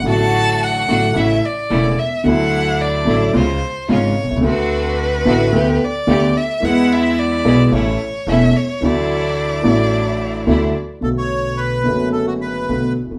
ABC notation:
X:1
M:4/4
L:1/16
Q:1/4=109
K:D
V:1 name="Violin"
a4 f4 e2 d4 e2 | f4 d4 =c4 ^c4 | B8- B2 d4 e2 | f2 e2 d4 c4 e2 c2 |
d12- d2 z2 | [K:Bm] z16 |]
V:2 name="Bandoneon"
z16 | z16 | z16 | z16 |
z16 | [K:Bm] A c3 B4 A F B4 z2 |]
V:3 name="String section"
[A,DF]6 [A,DF]2 [A,CE]2 z2 [A,CE]2 z2 | [F,DE]6 [F,DE]2 [^G,C^E]2 z2 [G,CE]2 z2 | [=CDF]6 [CDF]2 [A,B,G]2 z2 [A,B,G]2 z2 | [^G,B,E]6 [G,B,E]2 [A,CE]2 z2 [A,CE]2 z2 |
[F,DE]6 [F,DE]6 [F,DE]2 z2 | [K:Bm] z16 |]
V:4 name="Upright piano" clef=bass
[A,,,A,,D,F,A,F]6 [A,,,A,,D,F,A,F]2 [A,,,A,,C,E,A,E]2 z2 [E,,,E,,C,E,A,E]2 z2 | [D,,D,F,A,E]6 [A,,,A,,D,F,A,E]2 [C,,C,^E,^G,^E]2 z2 [^G,,,^G,,C,E,G,E]2 z/2 B,,,/2 =C,,/2 ^C,,/2 | [D,,D,A,=CF]6 [A,,,A,,D,A,CF]2 [D,,D,A,B,G]2 z2 [D,,D,A,B,G]2 z2 | [E,,E,^G,B,^G]6 [B,,,B,,E,G,B,G]2 [A,,,A,,E,A,CA]2 z2 [E,,,E,,E,A,CA]2 z2 |
[D,,D,E,A,DF]6 [A,,,A,,E,A,DF]6 [D,,D,E,A,DF]2 z2 | [K:Bm] [B,,,B,,D,A,B,F]6 [F,,,F,,D,A,B,F]6 [B,,,B,,D,A,B,F]2 z/2 E,,/2 ^E,,/2 z/2 |]
V:5 name="Upright bass" clef=bass
A,,,4- A,,,3/2 z/2 A,,,3/2 z/2 A,,,3/2 z2 z/2 E,,,3/2 z2 z/2 | D,,4- D,,3/2 z/2 A,,,3/2 z/2 C,,3/2 z2 z/2 ^G,,,3/2 z B,,,/2 =C,,/2 ^C,,/2 | D,,4- D,,3/2 z/2 A,,,3/2 z/2 D,,3/2 z2 z/2 D,,3/2 z2 z/2 | E,,4- E,,3/2 z/2 B,,,3/2 z/2 A,,,3/2 z2 z/2 E,,,3/2 z2 z/2 |
D,,4- D,,3/2 z/2 A,,,4- A,,,3/2 z/2 D,,3/2 z2 z/2 | [K:Bm] B,,,4- B,,,3/2 z/2 F,,,4- F,,,3/2 z/2 B,,,3/2 z E,,,/2 ^E,,,/2 z/2 |]